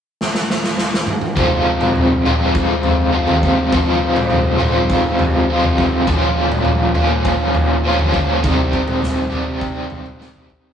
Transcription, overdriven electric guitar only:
1.36 2.29 F2 medium
1.36 2.24 C3 medium
1.36 2.27 F3 medium
1.36 2.27 G#3 medium
1.36 2.26 C4 medium
1.36 2.25 F4 medium
2.26 3.10 F2 medium
2.26 3.11 C3 medium
2.26 3.13 F3 medium
2.26 3.13 G#3 medium
2.26 3.14 C4 medium
2.26 3.15 F4 medium
3.12 3.70 F2 medium
3.12 3.70 C3 medium
3.12 3.74 F3 medium
3.12 3.71 G#3 medium
3.12 3.75 C4 medium
3.12 3.76 F4 medium
3.73 4.59 F2 medium
3.73 4.60 C3 medium
3.73 4.60 F3 medium
3.73 4.59 G#3 medium
3.73 4.59 C4 medium
3.73 4.57 F4 medium
4.58 5.48 C3 medium
4.58 5.47 F3 medium
4.58 5.47 G#3 medium
4.58 5.52 C4 medium
4.58 5.46 F4 medium
4.62 5.48 F2 medium
5.49 6.06 F2 medium
5.49 6.07 C3 medium
5.49 6.07 F3 medium
5.49 6.08 G#3 medium
5.49 6.10 C4 medium
5.49 6.08 F4 medium
6.07 6.94 A#2 medium
6.07 6.94 F3 medium
6.07 6.96 A#3 medium
6.07 6.94 C#4 medium
6.07 6.93 F4 medium
6.94 7.82 A#2 medium
6.94 7.83 F3 medium
6.94 7.86 A#3 medium
6.94 7.82 C#4 medium
6.94 7.82 F4 medium
7.84 8.41 A#2 medium
7.84 8.42 F3 medium
7.84 8.44 A#3 medium
7.84 8.43 C#4 medium
7.84 8.43 F4 medium
8.43 9.29 C3 medium
8.43 9.30 D#3 medium
8.43 9.30 G3 medium
8.43 9.30 C4 medium
8.43 9.29 G4 medium
9.30 10.18 C3 medium
9.30 10.18 D#3 medium
9.30 10.18 G3 medium
9.30 10.18 C4 medium
9.30 10.17 G4 medium
10.19 10.73 C3 medium
10.19 10.73 D#3 medium
10.19 10.73 G3 medium
10.19 10.73 C4 medium
10.19 10.73 G4 medium

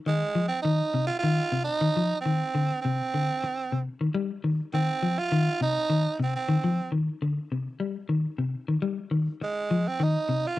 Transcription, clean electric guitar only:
0.06 0.22 D#3 medium
0.35 0.51 F3 medium
0.65 0.81 D#3 medium
0.94 1.10 C3 medium
1.24 1.39 D#3 medium
1.52 1.68 C3 medium
1.81 1.89 D#3 medium
1.97 2.12 F3 medium
2.26 2.42 D#3 medium
2.55 2.71 D3 medium
2.85 3.01 C3 medium
3.14 3.30 D3 medium
3.44 muted clean electric guitar stroke medium
3.72 3.88 C3 medium
4.01 4.09 D#3 medium
4.14 4.31 G3 medium
4.44 4.60 D#3 medium
4.74 4.90 D#3 medium
5.03 5.19 F3 medium
5.32 5.48 D#3 medium
5.61 5.77 C3 medium
5.90 6.06 D#3 medium
6.20 6.35 C3 medium
6.49 6.57 D#3 medium
6.64 6.80 F3 medium
6.92 7.08 D#3 medium
7.22 7.38 D3 medium
7.52 7.68 C3 medium
7.80 7.96 G3 medium
8.09 8.25 D#3 medium
8.38 8.55 C3 medium
8.68 8.76 D#3 medium
8.82 8.98 G3 medium
9.11 9.27 D#3 medium
9.41 muted clean electric guitar stroke medium
9.71 9.87 F3 medium
10.00 10.16 D#3 medium
10.29 10.45 C3 medium

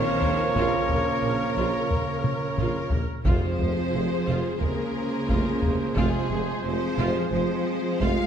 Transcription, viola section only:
0.00 0.19 F4 medium
0.00 3.03 A#4 medium
0.22 0.30 A#3 soft
0.56 0.87 F4 medium
0.89 0.97 A#3 soft
1.22 1.30 C#4 soft
1.56 1.88 F4 medium
1.90 1.98 A#3 soft
2.58 2.90 F4 medium
2.92 3.00 A#3 soft
3.24 3.57 F4 medium
3.24 8.27 G#4 medium
3.59 3.67 G#3 soft
3.93 4.01 C4 soft
4.26 4.58 F4 medium
4.61 4.69 G#3 medium
5.28 5.61 F4 medium
5.62 5.70 G#3 soft
5.97 6.29 F4 medium
6.30 6.38 G#3 soft
6.64 6.72 C4 soft
6.98 7.30 F4 medium
7.33 7.41 G#3 medium
8.01 8.27 F4 medium

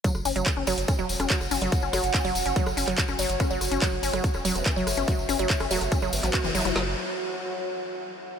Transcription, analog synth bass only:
0.15 0.22 F#1 medium
0.25 0.32 F#1 loud
0.36 0.43 F#1 medium
0.57 0.63 F#1 medium
0.67 0.74 F#1 loud
0.78 0.84 F#1 medium
0.99 1.05 E1 medium
1.09 1.16 E1 loud
1.20 1.26 E1 medium
1.41 1.47 F#1 medium
1.51 1.58 F#1 loud
1.62 1.68 F#1 medium
1.83 1.89 F#1 medium
1.93 2.00 F#1 medium
2.04 2.10 F#1 medium
2.25 2.31 F#1 medium
2.35 2.42 E1 medium
2.46 2.52 F#1 medium
2.67 2.73 F#1 medium
2.77 2.84 F#1 loud
2.88 2.94 F#1 medium
3.09 3.15 F#1 medium
3.19 3.26 F#1 loud
3.30 3.36 F#1 loud
3.51 3.57 F#1 medium
3.61 3.68 F#1 loud
3.72 3.78 F#1 medium
3.92 3.99 F#1 medium
4.03 4.10 F#1 loud
4.13 4.20 F#1 medium
4.34 4.41 E1 medium
4.45 4.52 E1 loud
4.55 4.62 E1 loud
4.76 4.83 F#1 medium
4.87 4.94 F#1 loud
4.97 5.04 F#1 medium
5.18 5.25 F#1 medium
5.29 5.36 F#1 loud
5.39 5.46 F#1 loud
5.60 5.67 F#1 medium
5.71 5.77 E1 loud
5.81 5.88 F#1 medium
6.02 6.09 F#1 medium
6.13 6.19 G1 loud
6.23 6.30 A1 loud
6.44 6.51 F#1 medium
6.55 6.61 F#1 loud
6.65 6.72 F#1 loud
6.76 6.95 F#1 medium

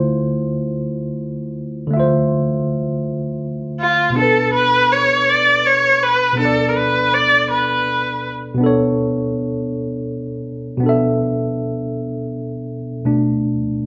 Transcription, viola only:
3.80 4.13 F4 medium
4.18 4.51 A4 medium
4.54 4.93 B4 loud
4.92 5.30 C#5 medium
5.29 5.68 D5 medium
5.66 6.04 C#5 medium
6.02 6.39 B4 loud
6.40 6.70 A4 medium
6.69 6.78 A#4 medium
6.76 7.15 B4 medium
7.14 7.50 D5 medium
7.51 8.29 B4 medium

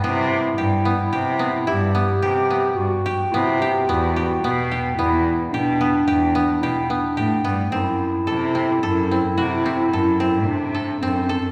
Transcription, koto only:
0.00 0.85 B3 medium
0.00 0.58 G4 medium
0.58 1.12 G4 medium
0.85 1.39 B3 medium
1.13 2.22 G4 medium
1.39 1.94 B3 medium
1.67 3.93 E4 medium
1.95 2.50 B3 medium
2.22 3.05 G4 medium
2.51 3.33 B3 medium
3.06 3.61 G4 medium
3.34 3.88 B3 medium
3.62 4.16 G4 medium
3.89 4.44 B3 medium
4.16 4.71 G4 medium
4.44 4.98 B3 medium
4.72 5.53 G4 medium
4.99 5.80 B3 medium
5.54 6.07 G4 medium
5.81 6.35 B3 medium
6.08 6.63 G4 medium
6.35 6.90 B3 medium
6.63 7.17 G4 medium
6.90 7.44 B3 medium
7.17 9.21 G4 medium
7.44 7.78 B3 medium
7.72 8.54 C4 medium
8.27 8.83 A4 medium
8.55 9.11 C4 medium
8.83 9.93 A4 medium
9.11 9.65 C4 medium
9.38 11.49 F#4 medium
9.66 10.20 C4 medium
9.93 10.74 A4 medium
10.20 11.02 C4 medium
10.75 11.29 A4 medium
11.03 11.52 C4 medium
11.29 11.52 A4 medium

